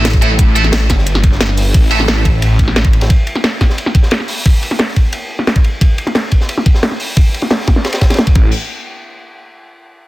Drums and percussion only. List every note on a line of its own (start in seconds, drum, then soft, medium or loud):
0.05 snare loud
0.05 closed hi-hat medium
0.05 ride medium
0.13 kick loud
0.13 ride soft
0.22 closed hi-hat medium
0.22 ride medium
0.39 kick loud
0.39 closed hi-hat medium
0.39 ride medium
0.55 closed hi-hat medium
0.55 ride medium
0.64 snare soft
0.64 ride soft
0.72 snare loud
0.72 closed hi-hat medium
0.72 ride medium
0.90 kick medium
0.90 snare soft
0.90 snare medium
0.90 closed hi-hat medium
0.90 ride medium
0.98 snare soft
1.06 closed hi-hat medium
1.06 ride medium
1.15 snare medium
1.24 kick loud
1.24 closed hi-hat medium
1.24 ride medium
1.32 snare medium
1.40 snare loud
1.40 closed hi-hat medium
1.40 ride medium
1.49 snare soft
1.57 closed hi-hat medium
1.57 open hi-hat medium
1.74 kick loud
1.74 closed hi-hat medium
1.74 ride medium
1.91 closed hi-hat medium
1.91 ride medium
1.99 snare soft
1.99 ride soft
2.08 snare loud
2.08 closed hi-hat medium
2.08 ride medium
2.16 snare soft
2.25 kick medium
2.25 closed hi-hat medium
2.25 ride medium
2.42 closed hi-hat medium
2.42 ride medium
2.59 kick medium
2.59 closed hi-hat medium
2.59 ride medium
2.68 snare soft
2.76 snare loud
2.76 closed hi-hat medium
2.76 ride medium
2.85 kick loud
2.85 ride soft
2.93 closed hi-hat medium
2.93 ride medium
3.01 snare medium
3.01 ride medium
3.10 kick loud
3.10 closed hi-hat medium
3.10 ride medium
3.27 closed hi-hat medium
3.27 ride medium
3.35 snare soft
3.35 ride soft
3.44 snare loud
3.44 closed hi-hat medium
3.44 ride loud
3.61 kick medium
3.61 snare soft
3.61 snare medium
3.61 closed hi-hat medium
3.61 ride medium
3.70 snare medium
3.78 closed hi-hat medium
3.78 ride medium
3.86 snare soft
3.95 kick loud
3.95 closed hi-hat medium
3.95 ride medium
4.03 snare medium
4.11 snare loud
4.11 closed hi-hat medium
4.11 ride medium
4.20 snare soft
4.28 closed hi-hat medium
4.28 open hi-hat medium
4.46 kick loud
4.46 closed hi-hat medium
4.46 ride medium
4.63 closed hi-hat medium
4.63 ride medium
4.71 snare soft
4.71 ride soft
4.79 snare loud
4.79 closed hi-hat medium
4.79 ride medium
4.88 snare soft
4.96 kick medium
4.96 closed hi-hat medium
4.96 ride medium
5.13 closed hi-hat medium
5.13 ride medium
5.30 closed hi-hat medium
5.39 snare soft
5.47 snare loud
5.47 closed hi-hat medium
5.47 ride medium
5.56 kick loud
5.56 ride soft
5.64 closed hi-hat medium
5.64 ride medium
5.81 kick loud
5.81 closed hi-hat loud
5.81 ride medium
5.98 closed hi-hat medium
5.98 ride medium
6.07 snare soft
6.07 ride soft
6.15 snare loud
6.15 ride medium
6.31 kick medium
6.31 closed hi-hat medium
6.31 ride medium
6.41 snare soft
6.49 closed hi-hat loud
6.49 ride medium
6.58 snare soft
6.66 kick loud
6.66 ride medium
6.74 snare medium
6.83 snare loud
6.83 ride medium
6.91 snare soft
7.00 closed hi-hat medium
7.00 open hi-hat medium
7.17 kick loud
7.17 ride medium
7.34 closed hi-hat medium
7.34 ride medium
7.42 snare soft
7.42 ride soft
7.50 snare loud
7.50 ride medium
7.60 snare soft
7.67 kick medium
7.67 snare medium
7.67 ride medium
7.76 snare soft
7.85 snare loud
7.85 ride medium
7.93 snare loud
7.93 ride medium
8.01 kick medium
8.01 snare loud
8.01 ride medium
8.10 snare medium
8.10 snare soft
8.10 ride medium
8.14 snare medium
8.14 ride medium
8.19 snare loud
8.19 ride medium
8.27 kick loud
8.27 ride soft
8.35 kick loud
8.35 crash medium